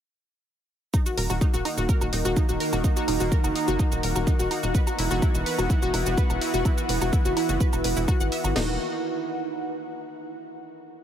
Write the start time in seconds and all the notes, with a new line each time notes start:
0.94 D#3 A#3 D#4 F#4, kick, low woodblock, shaker
1.06 F#4 A#5, shaker
1.14 D#1 A#4, open hi-hat
1.30 D#1 F#4, low woodblock, shaker
1.41 D#4 F#5, kick, shaker
1.54 D#1 F#4, shaker
1.65 D#4, open hi-hat, low woodblock
1.77 D#1 F#4, shaker
1.89 A#4, kick, shaker
2.01 D#1 F#4, low woodblock, shaker
2.13 D#1 D#4, open hi-hat
2.25 D#1 F#4, shaker
2.37 D#4, kick, low woodblock, shaker
2.49 D#1 F#4, shaker
2.60 A#4, open hi-hat
2.73 D#1 F#4, low woodblock, shaker
2.84 D#4, kick, shaker
2.97 F#4, shaker
3.08 D#1 D#4, open hi-hat, low woodblock
3.20 D#1 F#4, shaker
3.32 A#4, kick, shaker
3.44 F#1 F#4, low woodblock, shaker
3.56 D#4, open hi-hat
3.68 F#1 F#4, shaker
3.79 D#4, kick, low woodblock, shaker
3.92 D#1 F#4, shaker
4.03 D#1 A#4, open hi-hat
4.16 D#1 F#4, low woodblock, shaker
4.27 D#4, kick, shaker
4.39 D#1 F#4, shaker
4.51 D#4, open hi-hat, low woodblock
4.63 D#1 F#4, shaker
4.75 E3 B3 E4 B4, kick, shaker
4.84 F#4 B4, low woodblock, shaker
4.99 E1 E4, open hi-hat
5.11 E1 F#4, shaker
5.22 E4, kick, low woodblock, shaker
5.34 E1 F#4, shaker
5.46 B4, open hi-hat
5.51 B5
5.58 E1 F#4, low woodblock, shaker
5.70 E4, kick, shaker
5.82 E1 F#4, shaker
5.94 E1 E4, open hi-hat, low woodblock
6.06 E1 F#4, shaker
6.18 B4, kick, shaker
6.30 E1 F#4, low woodblock, shaker
6.41 E4, open hi-hat
6.54 E1 F#4, shaker
6.65 E4, kick, low woodblock, shaker
6.78 F#4, shaker
6.89 E1 B4, open hi-hat
7.01 E1 F#4, low woodblock, shaker
7.13 E4, kick, shaker
7.25 F#1 F#4, shaker
7.37 E4, open hi-hat, low woodblock
7.49 F#1 F#4, shaker
7.60 B4, kick, shaker
7.73 E1 F#4, low woodblock, shaker
7.84 E1 B4, open hi-hat
7.97 E1 E4, shaker
8.08 F#4, kick, low woodblock, shaker
8.20 G#1 F#5, shaker
8.32 E5, open hi-hat
8.44 G#1 F#4, low woodblock, shaker
8.56 D#1 D#3 A#3 D#4 F#4, snare, crash
8.63 A#4
8.70 F#5
8.77 A#5